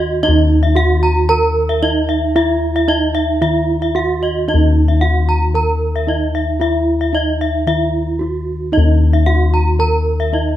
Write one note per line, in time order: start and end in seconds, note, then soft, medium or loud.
0.00 0.72 D#3 medium
0.00 0.23 F#4 medium
0.23 0.76 D#4 medium
0.23 1.79 D#4 medium
0.23 0.37 D#5 medium
0.29 3.41 D#2 medium
0.63 0.76 E5 medium
0.75 0.84 E4 soft
0.75 1.29 F#4 medium
0.75 0.90 F#5 medium
1.03 1.16 A#5 medium
1.29 1.83 A#4 medium
1.29 1.43 A#5 medium
1.69 1.83 E5 medium
1.82 2.36 D#4 medium
1.82 1.91 E4 soft
1.82 1.96 D#5 medium
2.09 2.22 E5 medium
2.36 2.88 E4 medium
2.36 2.89 E4 medium
2.36 2.49 E5 medium
2.76 2.89 E5 medium
2.88 3.42 D#4 medium
2.88 2.97 E4 soft
2.88 3.02 D#5 medium
3.15 3.28 E5 medium
3.42 4.97 D#3 medium
3.42 3.95 E4 medium
3.42 3.55 E5 medium
3.82 3.95 E5 soft
3.95 4.03 E4 soft
3.95 4.48 F#4 medium
3.95 4.09 F#5 medium
4.23 4.36 D#5 medium
4.48 5.01 D#4 medium
4.48 6.04 D#4 medium
4.48 4.62 D#5 medium
4.54 7.66 D#2 medium
4.88 5.01 E5 soft
5.01 5.09 E4 soft
5.01 5.55 F#4 medium
5.01 5.15 F#5 medium
5.29 5.42 A#5 medium
5.54 6.08 A#4 medium
5.54 5.68 A#5 medium
5.96 6.08 E5 soft
6.07 6.60 D#4 medium
6.07 6.16 E4 soft
6.07 6.21 D#5 soft
6.35 6.48 E5 soft
6.60 7.13 E4 medium
6.60 7.14 E4 medium
6.60 6.74 E5 medium
7.01 7.14 E5 soft
7.13 7.66 D#4 medium
7.13 7.23 E4 soft
7.13 7.28 D#5 medium
7.41 7.54 E5 soft
7.67 9.22 D#3 soft
7.67 8.20 E4 medium
7.67 7.80 E5 medium
8.19 8.29 E4 soft
8.19 8.73 F#4 soft
8.72 9.26 D#4 medium
8.72 10.29 D#4 medium
8.72 8.86 D#5 medium
8.78 10.57 D#2 medium
9.13 9.26 E5 soft
9.26 9.35 E4 soft
9.26 9.79 F#4 medium
9.26 9.40 F#5 medium
9.54 9.66 A#5 soft
9.79 10.32 A#4 medium
9.79 9.93 A#5 medium
10.20 10.33 E5 soft
10.33 10.57 D#4 soft
10.33 10.41 E4 soft
10.33 10.46 D#5 soft